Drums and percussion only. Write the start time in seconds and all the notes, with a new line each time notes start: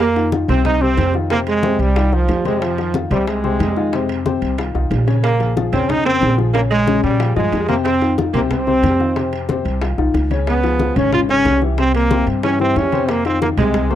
0.00 high bongo, high conga, high timbale
0.16 high bongo, high conga, high timbale
0.32 high bongo, high conga
0.49 high conga, low conga, high timbale
0.65 high bongo, high conga, low conga, high timbale
0.81 high bongo, high conga
0.97 high bongo, low bongo, high conga, high timbale, low timbale
1.14 high bongo, high conga
1.30 high bongo, high conga, high timbale
1.47 high bongo, high conga, high timbale
1.63 high bongo, high conga
1.80 high conga, high timbale
1.96 high bongo, high conga, high timbale
2.12 high bongo, high conga
2.28 high bongo, low bongo, high conga, high timbale, low timbale
2.45 high bongo, high conga, high timbale
2.62 high bongo, high conga, high timbale
2.78 high bongo, high conga, high timbale
2.94 high bongo, high conga
3.11 high conga, low conga, high timbale
3.27 high bongo, high conga, high timbale
3.44 high bongo, high conga
3.60 high bongo, low bongo, high conga, high timbale, low timbale
3.76 high bongo, high conga
3.93 high bongo, high conga, high timbale
4.09 high bongo, high conga, high timbale
4.26 high bongo, high conga
4.42 high conga, high timbale
4.58 high bongo, high conga, high timbale
4.75 high bongo, high conga
4.91 high bongo, low bongo, high conga, high timbale, low timbale
5.08 high bongo, high timbale
5.24 high bongo, high conga, high timbale
5.40 high bongo, high conga, high timbale
5.57 high bongo, high conga
5.73 high conga, low conga, high timbale
5.89 high bongo, high conga, low conga, high timbale
6.06 high bongo, high conga
6.22 high bongo, low bongo, high conga, high timbale, low timbale
6.39 high bongo, high conga
6.55 high bongo, high conga, high timbale
6.71 high bongo, high conga, high timbale
6.87 high bongo, high conga
7.04 high conga, high timbale
7.20 high bongo, high conga, high timbale
7.36 high bongo, high conga
7.52 high bongo, low bongo, high conga, high timbale, low timbale
7.69 high bongo, high conga, high timbale
7.85 high bongo, high conga, high timbale
8.01 high bongo, high conga, high timbale
8.18 high bongo, high conga
8.34 high conga, low conga, high timbale
8.51 high bongo, high conga, low conga, high timbale
8.67 high bongo, high conga
8.83 high bongo, low bongo, high conga, high timbale, low timbale
9.00 high bongo, high conga
9.16 high bongo, high conga, high timbale
9.33 high bongo, high conga, high timbale
9.49 high bongo, high conga
9.65 high conga, high timbale
9.81 high bongo, high conga, high timbale
9.98 high bongo, high conga
10.14 high bongo, low bongo, high conga, high timbale
10.30 high bongo, high conga, high timbale
10.47 high bongo, high conga, high timbale
10.63 high bongo, high conga, high timbale
10.79 high bongo, high conga
10.96 high conga, low conga, high timbale
11.12 high bongo, high conga, low conga, high timbale
11.29 high bongo, high conga
11.45 high bongo, low bongo, high conga, high timbale, low timbale
11.61 high bongo, high conga
11.78 high bongo, high conga, high timbale
11.94 high bongo, high conga, high timbale
12.11 high bongo, high conga
12.27 high conga, high timbale
12.43 high bongo, high conga, high timbale
12.60 high bongo, high conga
12.76 high bongo, low bongo, high conga, high timbale, low timbale
12.92 high bongo, high conga, high timbale
13.08 high bongo, high conga, high timbale
13.25 high bongo, high conga, high timbale
13.42 high bongo, high conga
13.57 high conga, low conga, high timbale
13.74 high bongo, high conga, low conga, high timbale
13.91 high bongo, high conga